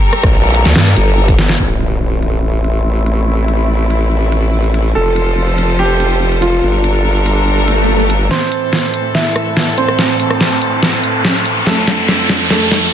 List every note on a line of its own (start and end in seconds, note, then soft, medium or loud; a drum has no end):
0.00 1.56 G3 medium
0.00 1.56 G4 medium
0.00 1.56 A4 medium
0.00 1.56 A#4 medium
0.13 cross-stick medium
0.13 closed hi-hat medium
0.23 0.64 A#1 medium
0.23 kick loud
0.23 cross-stick medium
0.55 closed hi-hat medium
0.65 0.74 D2 loud
0.65 snare soft
0.76 0.95 G2 loud
0.76 snare loud
0.97 1.58 G1 loud
0.97 closed hi-hat medium
1.28 kick medium
1.28 closed hi-hat soft
1.39 snare medium
1.39 closed hi-hat medium
1.49 snare medium
1.60 4.93 A1 medium
1.60 4.92 A3 medium
1.60 4.92 C4 medium
1.60 4.92 E4 medium
1.60 crash medium
1.60 impact medium
1.81 closed hi-hat medium
2.22 closed hi-hat medium
2.64 closed hi-hat medium
2.96 closed hi-hat soft
3.06 closed hi-hat medium
3.48 closed hi-hat medium
3.90 closed hi-hat medium
4.32 closed hi-hat medium
4.64 closed hi-hat soft
4.74 closed hi-hat medium
4.95 6.61 F1 medium
4.95 6.61 F3 medium
4.95 6.61 F4 medium
4.95 6.61 A4 medium
4.95 5.71 A4 medium
4.95 6.61 C5 medium
5.16 closed hi-hat medium
5.58 closed hi-hat medium
5.79 6.34 G4 medium
6.00 closed hi-hat medium
6.32 closed hi-hat soft
6.42 8.23 F4 medium
6.42 closed hi-hat medium
6.63 8.29 G1 medium
6.63 8.29 G3 medium
6.63 8.29 D4 medium
6.63 8.29 A4 medium
6.63 8.29 A#4 medium
6.84 closed hi-hat medium
7.26 closed hi-hat medium
7.47 swell medium
7.68 closed hi-hat medium
8.00 closed hi-hat soft
8.10 closed hi-hat medium
8.31 11.63 A2 medium
8.31 11.63 E3 medium
8.31 9.07 C4 medium
8.31 12.93 C4 medium
8.31 12.93 A4 medium
8.31 9.07 C5 medium
8.31 snare soft
8.31 riser medium
8.52 closed hi-hat medium
8.73 snare soft
8.94 closed hi-hat medium
9.15 9.70 E4 medium
9.15 9.70 E5 medium
9.15 snare medium
9.36 cross-stick medium
9.36 closed hi-hat medium
9.57 snare medium
9.78 11.58 C4 medium
9.78 11.58 C5 medium
9.78 closed hi-hat medium
9.88 cross-stick medium
9.99 snare medium
10.20 closed hi-hat medium
10.30 cross-stick medium
10.41 snare medium
10.62 closed hi-hat medium
10.83 snare medium
11.04 closed hi-hat medium
11.25 snare medium
11.46 closed hi-hat medium
11.67 12.93 F2 medium
11.67 12.93 F3 medium
11.67 12.42 A3 medium
11.67 12.42 A4 medium
11.67 snare medium
11.88 snare medium
11.88 closed hi-hat medium
12.08 snare medium
12.29 snare medium
12.29 closed hi-hat medium
12.50 12.93 A3 medium
12.50 12.93 A4 medium
12.50 snare medium
12.71 snare medium
12.71 closed hi-hat medium